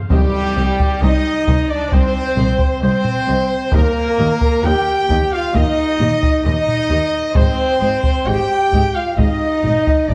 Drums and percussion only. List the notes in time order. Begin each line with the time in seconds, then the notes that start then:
0.10 taiko
0.80 taiko
1.47 taiko
1.92 taiko
2.37 taiko low-mid
2.59 taiko
3.05 taiko low-mid
3.72 taiko
4.41 taiko
5.10 taiko
5.55 taiko
6.00 taiko low-mid
6.23 taiko
6.68 taiko low-mid
7.35 taiko
8.04 taiko
8.73 taiko
9.19 taiko
9.64 taiko low-mid
9.87 taiko